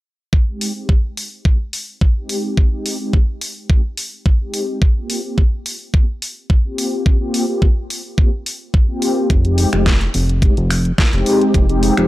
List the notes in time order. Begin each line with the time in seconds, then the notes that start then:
0.33 kick
0.47 G#3 C4 D#4 G4
0.61 open hi-hat
0.76 C4 D#4 G4
0.89 kick
1.17 open hi-hat
1.45 G#3 C4 D#4 G4, kick
1.73 open hi-hat
2.01 kick
2.16 G#3 C4 D#4 G4
2.29 open hi-hat
2.57 kick
2.72 G#3 C4 D#4 G4
2.86 open hi-hat
3.00 G#3 C4 D#4 G4
3.13 kick
3.41 open hi-hat
3.69 G#3 C4 D#4 G4, kick
3.97 open hi-hat
4.26 kick
4.40 G#3 C4 D#4 G4
4.54 open hi-hat
4.82 kick
4.96 A#3 C4 F4 G4
5.10 open hi-hat
5.24 A#3 C4 F4 G4
5.38 kick
5.66 open hi-hat
5.93 A#3 C4 F4 G4, kick
6.22 open hi-hat
6.50 kick
6.64 A#3 C4 F4 G4
6.78 open hi-hat
7.06 kick
7.20 A#3 C4 F4 G4
7.34 open hi-hat
7.48 A#3 C4 G4
7.62 kick
7.90 open hi-hat
8.17 A#3 C4 F4 G4, kick
8.46 open hi-hat
8.74 kick
8.88 A#3 C4 F4 G4
9.02 open hi-hat
9.30 F1, kick, closed hi-hat
9.45 G#3 C4 D#4 G4, closed hi-hat
9.58 open hi-hat
9.72 F1 G#3 C4 D#4 G4, finger snap, closed hi-hat
9.86 kick, snare, closed hi-hat
10.01 closed hi-hat
10.14 F1, open hi-hat
10.29 closed hi-hat
10.42 G#3 C4 D#4 G4, kick, closed hi-hat
10.57 F1, closed hi-hat
10.70 finger snap, open hi-hat
10.85 closed hi-hat
10.98 kick, snare, closed hi-hat
11.13 F1 G#3 C4 D#4 G4, closed hi-hat
11.26 open hi-hat
11.41 closed hi-hat
11.54 F1, kick, closed hi-hat
11.69 G#3 C4 D#4 G4, closed hi-hat
11.83 open hi-hat
11.97 F1 G#3 C4 D#4 G4, finger snap, closed hi-hat